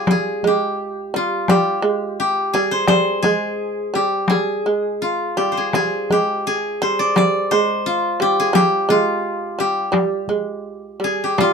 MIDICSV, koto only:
0, 0, Header, 1, 2, 480
1, 0, Start_track
1, 0, Tempo, 703400
1, 59, Time_signature, 2, 2, 24, 8
1, 2937, Tempo, 722022
1, 4377, Tempo, 692841
1, 6777, Tempo, 726392
1, 7833, End_track
2, 0, Start_track
2, 0, Title_t, "Koto"
2, 0, Program_c, 0, 107
2, 0, Note_on_c, 0, 65, 52
2, 0, Note_on_c, 0, 68, 43
2, 70, Note_off_c, 0, 68, 0
2, 73, Note_on_c, 0, 68, 61
2, 323, Note_on_c, 0, 67, 60
2, 364, Note_off_c, 0, 68, 0
2, 790, Note_off_c, 0, 65, 0
2, 792, Note_on_c, 0, 65, 64
2, 1018, Note_off_c, 0, 67, 0
2, 1021, Note_on_c, 0, 67, 70
2, 1497, Note_off_c, 0, 67, 0
2, 1500, Note_on_c, 0, 67, 79
2, 1730, Note_on_c, 0, 68, 75
2, 1771, Note_off_c, 0, 67, 0
2, 1852, Note_on_c, 0, 72, 73
2, 1964, Note_off_c, 0, 72, 0
2, 1967, Note_on_c, 0, 72, 87
2, 2198, Note_off_c, 0, 68, 0
2, 2201, Note_on_c, 0, 68, 79
2, 2284, Note_off_c, 0, 65, 0
2, 2697, Note_on_c, 0, 67, 70
2, 2738, Note_off_c, 0, 68, 0
2, 2932, Note_on_c, 0, 68, 73
2, 2972, Note_off_c, 0, 67, 0
2, 3132, Note_off_c, 0, 72, 0
2, 3412, Note_on_c, 0, 65, 67
2, 3646, Note_on_c, 0, 67, 59
2, 3686, Note_off_c, 0, 68, 0
2, 3744, Note_on_c, 0, 72, 47
2, 3781, Note_on_c, 0, 68, 56
2, 3821, Note_off_c, 0, 67, 0
2, 3894, Note_off_c, 0, 68, 0
2, 3897, Note_on_c, 0, 68, 72
2, 4146, Note_on_c, 0, 67, 64
2, 4186, Note_off_c, 0, 68, 0
2, 4376, Note_on_c, 0, 68, 76
2, 4418, Note_off_c, 0, 67, 0
2, 4615, Note_off_c, 0, 72, 0
2, 4617, Note_on_c, 0, 72, 72
2, 4739, Note_on_c, 0, 74, 78
2, 4862, Note_off_c, 0, 74, 0
2, 4865, Note_on_c, 0, 74, 84
2, 4886, Note_off_c, 0, 65, 0
2, 5095, Note_off_c, 0, 72, 0
2, 5098, Note_on_c, 0, 72, 84
2, 5341, Note_on_c, 0, 65, 78
2, 5588, Note_on_c, 0, 67, 80
2, 5630, Note_off_c, 0, 68, 0
2, 5712, Note_on_c, 0, 68, 74
2, 5753, Note_off_c, 0, 67, 0
2, 5818, Note_on_c, 0, 67, 84
2, 5860, Note_off_c, 0, 68, 0
2, 5974, Note_off_c, 0, 74, 0
2, 6059, Note_off_c, 0, 65, 0
2, 6062, Note_on_c, 0, 65, 81
2, 6286, Note_off_c, 0, 72, 0
2, 6542, Note_off_c, 0, 67, 0
2, 6545, Note_on_c, 0, 67, 67
2, 7508, Note_on_c, 0, 68, 67
2, 7539, Note_off_c, 0, 65, 0
2, 7547, Note_off_c, 0, 67, 0
2, 7638, Note_on_c, 0, 67, 58
2, 7678, Note_off_c, 0, 68, 0
2, 7749, Note_on_c, 0, 65, 81
2, 7833, Note_off_c, 0, 65, 0
2, 7833, Note_off_c, 0, 67, 0
2, 7833, End_track
0, 0, End_of_file